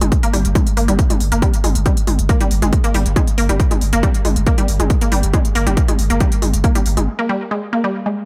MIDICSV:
0, 0, Header, 1, 4, 480
1, 0, Start_track
1, 0, Tempo, 434783
1, 130, Time_signature, 4, 2, 24, 8
1, 9110, End_track
2, 0, Start_track
2, 0, Title_t, "Synth arpeggio sound"
2, 0, Program_c, 0, 84
2, 16, Note_on_c, 0, 56, 77
2, 124, Note_off_c, 0, 56, 0
2, 255, Note_on_c, 0, 58, 102
2, 328, Note_off_c, 0, 58, 0
2, 369, Note_on_c, 0, 55, 104
2, 449, Note_off_c, 0, 55, 0
2, 610, Note_on_c, 0, 56, 82
2, 729, Note_off_c, 0, 56, 0
2, 850, Note_on_c, 0, 58, 101
2, 930, Note_off_c, 0, 58, 0
2, 974, Note_on_c, 0, 55, 102
2, 1048, Note_off_c, 0, 55, 0
2, 1216, Note_on_c, 0, 56, 76
2, 1325, Note_off_c, 0, 56, 0
2, 1456, Note_on_c, 0, 58, 103
2, 1529, Note_off_c, 0, 58, 0
2, 1570, Note_on_c, 0, 55, 103
2, 1650, Note_off_c, 0, 55, 0
2, 1810, Note_on_c, 0, 56, 79
2, 1929, Note_off_c, 0, 56, 0
2, 2050, Note_on_c, 0, 55, 103
2, 2130, Note_off_c, 0, 55, 0
2, 2290, Note_on_c, 0, 56, 77
2, 2409, Note_off_c, 0, 56, 0
2, 2531, Note_on_c, 0, 58, 104
2, 2610, Note_off_c, 0, 58, 0
2, 2657, Note_on_c, 0, 55, 99
2, 2729, Note_off_c, 0, 55, 0
2, 2896, Note_on_c, 0, 56, 76
2, 3005, Note_off_c, 0, 56, 0
2, 3136, Note_on_c, 0, 58, 101
2, 3209, Note_off_c, 0, 58, 0
2, 3251, Note_on_c, 0, 55, 100
2, 3330, Note_off_c, 0, 55, 0
2, 3491, Note_on_c, 0, 56, 83
2, 3610, Note_off_c, 0, 56, 0
2, 3730, Note_on_c, 0, 58, 106
2, 3810, Note_off_c, 0, 58, 0
2, 3856, Note_on_c, 0, 55, 98
2, 3928, Note_off_c, 0, 55, 0
2, 4096, Note_on_c, 0, 56, 78
2, 4204, Note_off_c, 0, 56, 0
2, 4337, Note_on_c, 0, 58, 105
2, 4409, Note_off_c, 0, 58, 0
2, 4450, Note_on_c, 0, 55, 103
2, 4530, Note_off_c, 0, 55, 0
2, 4690, Note_on_c, 0, 56, 73
2, 4809, Note_off_c, 0, 56, 0
2, 4929, Note_on_c, 0, 58, 104
2, 5009, Note_off_c, 0, 58, 0
2, 5056, Note_on_c, 0, 55, 101
2, 5129, Note_off_c, 0, 55, 0
2, 5295, Note_on_c, 0, 56, 75
2, 5404, Note_off_c, 0, 56, 0
2, 5536, Note_on_c, 0, 58, 103
2, 5608, Note_off_c, 0, 58, 0
2, 5649, Note_on_c, 0, 55, 104
2, 5730, Note_off_c, 0, 55, 0
2, 5890, Note_on_c, 0, 56, 87
2, 6010, Note_off_c, 0, 56, 0
2, 6129, Note_on_c, 0, 58, 104
2, 6210, Note_off_c, 0, 58, 0
2, 6255, Note_on_c, 0, 55, 104
2, 6328, Note_off_c, 0, 55, 0
2, 6495, Note_on_c, 0, 56, 77
2, 6604, Note_off_c, 0, 56, 0
2, 6735, Note_on_c, 0, 58, 104
2, 6808, Note_off_c, 0, 58, 0
2, 6850, Note_on_c, 0, 55, 105
2, 6930, Note_off_c, 0, 55, 0
2, 7091, Note_on_c, 0, 56, 78
2, 7210, Note_off_c, 0, 56, 0
2, 7330, Note_on_c, 0, 58, 106
2, 7410, Note_off_c, 0, 58, 0
2, 7456, Note_on_c, 0, 55, 101
2, 7528, Note_off_c, 0, 55, 0
2, 7696, Note_on_c, 0, 56, 75
2, 7805, Note_off_c, 0, 56, 0
2, 7935, Note_on_c, 0, 58, 104
2, 8008, Note_off_c, 0, 58, 0
2, 8051, Note_on_c, 0, 55, 103
2, 8130, Note_off_c, 0, 55, 0
2, 8291, Note_on_c, 0, 56, 83
2, 8410, Note_off_c, 0, 56, 0
2, 8531, Note_on_c, 0, 58, 98
2, 8610, Note_off_c, 0, 58, 0
2, 8656, Note_on_c, 0, 55, 104
2, 8729, Note_off_c, 0, 55, 0
2, 8897, Note_on_c, 0, 56, 76
2, 9005, Note_off_c, 0, 56, 0
2, 9110, End_track
3, 0, Start_track
3, 0, Title_t, "Sub bass"
3, 0, Program_c, 1, 38
3, 16, Note_on_c, 1, 31, 82
3, 128, Note_off_c, 1, 31, 0
3, 370, Note_on_c, 1, 31, 97
3, 489, Note_off_c, 1, 31, 0
3, 496, Note_on_c, 1, 31, 83
3, 608, Note_off_c, 1, 31, 0
3, 851, Note_on_c, 1, 31, 100
3, 970, Note_off_c, 1, 31, 0
3, 976, Note_on_c, 1, 31, 80
3, 1088, Note_off_c, 1, 31, 0
3, 1331, Note_on_c, 1, 31, 103
3, 1449, Note_off_c, 1, 31, 0
3, 1456, Note_on_c, 1, 31, 80
3, 1568, Note_off_c, 1, 31, 0
3, 1811, Note_on_c, 1, 31, 98
3, 1931, Note_off_c, 1, 31, 0
3, 1937, Note_on_c, 1, 31, 82
3, 2049, Note_off_c, 1, 31, 0
3, 2291, Note_on_c, 1, 31, 96
3, 2410, Note_off_c, 1, 31, 0
3, 2417, Note_on_c, 1, 31, 82
3, 2528, Note_off_c, 1, 31, 0
3, 2771, Note_on_c, 1, 31, 97
3, 2890, Note_off_c, 1, 31, 0
3, 2897, Note_on_c, 1, 31, 81
3, 3008, Note_off_c, 1, 31, 0
3, 3251, Note_on_c, 1, 31, 103
3, 3369, Note_off_c, 1, 31, 0
3, 3375, Note_on_c, 1, 31, 83
3, 3488, Note_off_c, 1, 31, 0
3, 3730, Note_on_c, 1, 31, 99
3, 3849, Note_off_c, 1, 31, 0
3, 3856, Note_on_c, 1, 31, 84
3, 3968, Note_off_c, 1, 31, 0
3, 4211, Note_on_c, 1, 31, 98
3, 4329, Note_off_c, 1, 31, 0
3, 4336, Note_on_c, 1, 31, 81
3, 4448, Note_off_c, 1, 31, 0
3, 4690, Note_on_c, 1, 31, 97
3, 4809, Note_off_c, 1, 31, 0
3, 4815, Note_on_c, 1, 31, 81
3, 4928, Note_off_c, 1, 31, 0
3, 5170, Note_on_c, 1, 31, 101
3, 5289, Note_off_c, 1, 31, 0
3, 5296, Note_on_c, 1, 31, 82
3, 5408, Note_off_c, 1, 31, 0
3, 5650, Note_on_c, 1, 31, 100
3, 5769, Note_off_c, 1, 31, 0
3, 5776, Note_on_c, 1, 31, 83
3, 5888, Note_off_c, 1, 31, 0
3, 6130, Note_on_c, 1, 31, 100
3, 6250, Note_off_c, 1, 31, 0
3, 6256, Note_on_c, 1, 31, 82
3, 6368, Note_off_c, 1, 31, 0
3, 6611, Note_on_c, 1, 31, 99
3, 6729, Note_off_c, 1, 31, 0
3, 6735, Note_on_c, 1, 31, 80
3, 6848, Note_off_c, 1, 31, 0
3, 7090, Note_on_c, 1, 31, 100
3, 7209, Note_off_c, 1, 31, 0
3, 7215, Note_on_c, 1, 31, 81
3, 7328, Note_off_c, 1, 31, 0
3, 7570, Note_on_c, 1, 31, 97
3, 7689, Note_off_c, 1, 31, 0
3, 7696, Note_on_c, 1, 31, 82
3, 7808, Note_off_c, 1, 31, 0
3, 9110, End_track
4, 0, Start_track
4, 0, Title_t, "Drums"
4, 15, Note_on_c, 9, 42, 69
4, 15, Note_on_c, 9, 47, 91
4, 126, Note_off_c, 9, 42, 0
4, 126, Note_off_c, 9, 47, 0
4, 130, Note_on_c, 9, 36, 120
4, 130, Note_on_c, 9, 42, 66
4, 241, Note_off_c, 9, 36, 0
4, 241, Note_off_c, 9, 42, 0
4, 256, Note_on_c, 9, 42, 65
4, 366, Note_off_c, 9, 42, 0
4, 370, Note_on_c, 9, 46, 106
4, 370, Note_on_c, 9, 47, 66
4, 481, Note_off_c, 9, 46, 0
4, 481, Note_off_c, 9, 47, 0
4, 496, Note_on_c, 9, 42, 66
4, 606, Note_off_c, 9, 42, 0
4, 610, Note_on_c, 9, 36, 125
4, 611, Note_on_c, 9, 42, 64
4, 611, Note_on_c, 9, 47, 93
4, 721, Note_off_c, 9, 36, 0
4, 721, Note_off_c, 9, 42, 0
4, 721, Note_off_c, 9, 47, 0
4, 735, Note_on_c, 9, 42, 66
4, 846, Note_off_c, 9, 42, 0
4, 850, Note_on_c, 9, 46, 107
4, 960, Note_off_c, 9, 46, 0
4, 975, Note_on_c, 9, 42, 64
4, 975, Note_on_c, 9, 47, 67
4, 1086, Note_off_c, 9, 42, 0
4, 1086, Note_off_c, 9, 47, 0
4, 1090, Note_on_c, 9, 36, 121
4, 1090, Note_on_c, 9, 42, 64
4, 1200, Note_off_c, 9, 42, 0
4, 1201, Note_off_c, 9, 36, 0
4, 1215, Note_on_c, 9, 42, 67
4, 1215, Note_on_c, 9, 47, 96
4, 1326, Note_off_c, 9, 42, 0
4, 1326, Note_off_c, 9, 47, 0
4, 1330, Note_on_c, 9, 46, 109
4, 1440, Note_off_c, 9, 46, 0
4, 1455, Note_on_c, 9, 42, 65
4, 1565, Note_off_c, 9, 42, 0
4, 1570, Note_on_c, 9, 36, 120
4, 1570, Note_on_c, 9, 42, 66
4, 1570, Note_on_c, 9, 47, 67
4, 1680, Note_off_c, 9, 42, 0
4, 1680, Note_off_c, 9, 47, 0
4, 1681, Note_off_c, 9, 36, 0
4, 1695, Note_on_c, 9, 42, 65
4, 1806, Note_off_c, 9, 42, 0
4, 1810, Note_on_c, 9, 46, 110
4, 1810, Note_on_c, 9, 47, 93
4, 1920, Note_off_c, 9, 46, 0
4, 1920, Note_off_c, 9, 47, 0
4, 1935, Note_on_c, 9, 42, 68
4, 2045, Note_off_c, 9, 42, 0
4, 2049, Note_on_c, 9, 42, 63
4, 2049, Note_on_c, 9, 47, 70
4, 2050, Note_on_c, 9, 36, 117
4, 2160, Note_off_c, 9, 42, 0
4, 2160, Note_off_c, 9, 47, 0
4, 2161, Note_off_c, 9, 36, 0
4, 2175, Note_on_c, 9, 42, 63
4, 2285, Note_off_c, 9, 42, 0
4, 2289, Note_on_c, 9, 46, 104
4, 2289, Note_on_c, 9, 47, 95
4, 2399, Note_off_c, 9, 46, 0
4, 2399, Note_off_c, 9, 47, 0
4, 2415, Note_on_c, 9, 42, 64
4, 2526, Note_off_c, 9, 42, 0
4, 2530, Note_on_c, 9, 36, 117
4, 2530, Note_on_c, 9, 42, 63
4, 2640, Note_off_c, 9, 42, 0
4, 2641, Note_off_c, 9, 36, 0
4, 2655, Note_on_c, 9, 42, 64
4, 2655, Note_on_c, 9, 47, 70
4, 2766, Note_off_c, 9, 42, 0
4, 2766, Note_off_c, 9, 47, 0
4, 2770, Note_on_c, 9, 46, 102
4, 2880, Note_off_c, 9, 46, 0
4, 2895, Note_on_c, 9, 42, 62
4, 2895, Note_on_c, 9, 47, 98
4, 3005, Note_off_c, 9, 42, 0
4, 3005, Note_off_c, 9, 47, 0
4, 3010, Note_on_c, 9, 36, 117
4, 3010, Note_on_c, 9, 42, 62
4, 3120, Note_off_c, 9, 42, 0
4, 3121, Note_off_c, 9, 36, 0
4, 3135, Note_on_c, 9, 42, 62
4, 3246, Note_off_c, 9, 42, 0
4, 3250, Note_on_c, 9, 46, 103
4, 3250, Note_on_c, 9, 47, 70
4, 3360, Note_off_c, 9, 46, 0
4, 3360, Note_off_c, 9, 47, 0
4, 3375, Note_on_c, 9, 42, 64
4, 3486, Note_off_c, 9, 42, 0
4, 3490, Note_on_c, 9, 36, 117
4, 3490, Note_on_c, 9, 42, 62
4, 3490, Note_on_c, 9, 47, 97
4, 3601, Note_off_c, 9, 36, 0
4, 3601, Note_off_c, 9, 42, 0
4, 3601, Note_off_c, 9, 47, 0
4, 3615, Note_on_c, 9, 42, 65
4, 3726, Note_off_c, 9, 42, 0
4, 3730, Note_on_c, 9, 46, 107
4, 3840, Note_off_c, 9, 46, 0
4, 3856, Note_on_c, 9, 42, 65
4, 3856, Note_on_c, 9, 47, 69
4, 3966, Note_off_c, 9, 42, 0
4, 3966, Note_off_c, 9, 47, 0
4, 3970, Note_on_c, 9, 36, 118
4, 3970, Note_on_c, 9, 42, 62
4, 4081, Note_off_c, 9, 36, 0
4, 4081, Note_off_c, 9, 42, 0
4, 4096, Note_on_c, 9, 42, 61
4, 4096, Note_on_c, 9, 47, 96
4, 4206, Note_off_c, 9, 42, 0
4, 4206, Note_off_c, 9, 47, 0
4, 4210, Note_on_c, 9, 46, 101
4, 4321, Note_off_c, 9, 46, 0
4, 4336, Note_on_c, 9, 42, 63
4, 4446, Note_off_c, 9, 42, 0
4, 4450, Note_on_c, 9, 36, 116
4, 4450, Note_on_c, 9, 42, 64
4, 4450, Note_on_c, 9, 47, 69
4, 4560, Note_off_c, 9, 42, 0
4, 4560, Note_off_c, 9, 47, 0
4, 4561, Note_off_c, 9, 36, 0
4, 4575, Note_on_c, 9, 42, 64
4, 4686, Note_off_c, 9, 42, 0
4, 4690, Note_on_c, 9, 46, 99
4, 4690, Note_on_c, 9, 47, 92
4, 4801, Note_off_c, 9, 46, 0
4, 4801, Note_off_c, 9, 47, 0
4, 4815, Note_on_c, 9, 42, 63
4, 4925, Note_off_c, 9, 42, 0
4, 4930, Note_on_c, 9, 36, 115
4, 4930, Note_on_c, 9, 42, 62
4, 5040, Note_off_c, 9, 42, 0
4, 5041, Note_off_c, 9, 36, 0
4, 5055, Note_on_c, 9, 42, 65
4, 5055, Note_on_c, 9, 47, 69
4, 5166, Note_off_c, 9, 42, 0
4, 5166, Note_off_c, 9, 47, 0
4, 5169, Note_on_c, 9, 46, 102
4, 5280, Note_off_c, 9, 46, 0
4, 5295, Note_on_c, 9, 42, 65
4, 5295, Note_on_c, 9, 47, 100
4, 5406, Note_off_c, 9, 42, 0
4, 5406, Note_off_c, 9, 47, 0
4, 5409, Note_on_c, 9, 42, 65
4, 5410, Note_on_c, 9, 36, 113
4, 5520, Note_off_c, 9, 42, 0
4, 5521, Note_off_c, 9, 36, 0
4, 5535, Note_on_c, 9, 42, 65
4, 5646, Note_off_c, 9, 42, 0
4, 5650, Note_on_c, 9, 46, 104
4, 5650, Note_on_c, 9, 47, 71
4, 5760, Note_off_c, 9, 46, 0
4, 5760, Note_off_c, 9, 47, 0
4, 5776, Note_on_c, 9, 42, 66
4, 5886, Note_off_c, 9, 42, 0
4, 5890, Note_on_c, 9, 36, 112
4, 5890, Note_on_c, 9, 42, 65
4, 5890, Note_on_c, 9, 47, 94
4, 6000, Note_off_c, 9, 42, 0
4, 6000, Note_off_c, 9, 47, 0
4, 6001, Note_off_c, 9, 36, 0
4, 6015, Note_on_c, 9, 42, 62
4, 6126, Note_off_c, 9, 42, 0
4, 6130, Note_on_c, 9, 46, 99
4, 6240, Note_off_c, 9, 46, 0
4, 6256, Note_on_c, 9, 42, 67
4, 6256, Note_on_c, 9, 47, 68
4, 6366, Note_off_c, 9, 42, 0
4, 6366, Note_off_c, 9, 47, 0
4, 6370, Note_on_c, 9, 42, 64
4, 6371, Note_on_c, 9, 36, 116
4, 6480, Note_off_c, 9, 42, 0
4, 6481, Note_off_c, 9, 36, 0
4, 6496, Note_on_c, 9, 42, 67
4, 6496, Note_on_c, 9, 47, 96
4, 6606, Note_off_c, 9, 42, 0
4, 6606, Note_off_c, 9, 47, 0
4, 6610, Note_on_c, 9, 46, 99
4, 6720, Note_off_c, 9, 46, 0
4, 6735, Note_on_c, 9, 42, 65
4, 6846, Note_off_c, 9, 42, 0
4, 6849, Note_on_c, 9, 42, 64
4, 6849, Note_on_c, 9, 47, 67
4, 6850, Note_on_c, 9, 36, 113
4, 6960, Note_off_c, 9, 42, 0
4, 6960, Note_off_c, 9, 47, 0
4, 6961, Note_off_c, 9, 36, 0
4, 6975, Note_on_c, 9, 42, 64
4, 7086, Note_off_c, 9, 42, 0
4, 7090, Note_on_c, 9, 46, 102
4, 7090, Note_on_c, 9, 47, 91
4, 7200, Note_off_c, 9, 46, 0
4, 7200, Note_off_c, 9, 47, 0
4, 7215, Note_on_c, 9, 42, 66
4, 7326, Note_off_c, 9, 42, 0
4, 7330, Note_on_c, 9, 36, 112
4, 7330, Note_on_c, 9, 42, 65
4, 7440, Note_off_c, 9, 42, 0
4, 7441, Note_off_c, 9, 36, 0
4, 7456, Note_on_c, 9, 42, 67
4, 7456, Note_on_c, 9, 47, 66
4, 7566, Note_off_c, 9, 42, 0
4, 7566, Note_off_c, 9, 47, 0
4, 7570, Note_on_c, 9, 46, 101
4, 7681, Note_off_c, 9, 46, 0
4, 7696, Note_on_c, 9, 42, 67
4, 7696, Note_on_c, 9, 47, 96
4, 7806, Note_off_c, 9, 42, 0
4, 7806, Note_off_c, 9, 47, 0
4, 9110, End_track
0, 0, End_of_file